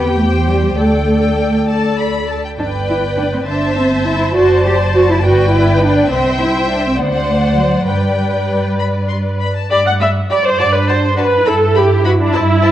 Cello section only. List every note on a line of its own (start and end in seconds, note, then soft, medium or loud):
0.00 0.16 B3 medium
0.17 0.25 A3 medium
0.47 0.76 G3 medium
0.77 1.66 A3 medium
2.58 2.66 D4 medium
2.89 2.97 E4 soft
3.18 3.24 D4 medium
3.33 3.39 C4 soft
3.47 3.76 D4 medium
3.76 4.06 C4 medium
4.06 4.36 E4 medium
4.36 4.65 F#4 medium
4.65 4.73 G4 medium
4.95 5.09 F#4 medium
5.10 5.16 E4 medium
5.24 5.53 F#4 medium
5.53 5.81 E4 medium
5.83 6.12 D4 medium
6.11 6.40 C4 medium
6.41 6.70 E4 medium
6.71 6.85 D4 medium
6.86 6.92 C4 soft
7.00 7.08 B3 medium
7.29 7.58 A3 medium
7.58 7.88 F#3 soft
7.88 9.40 G3 soft
10.60 11.43 D4 medium
11.47 12.72 E4 medium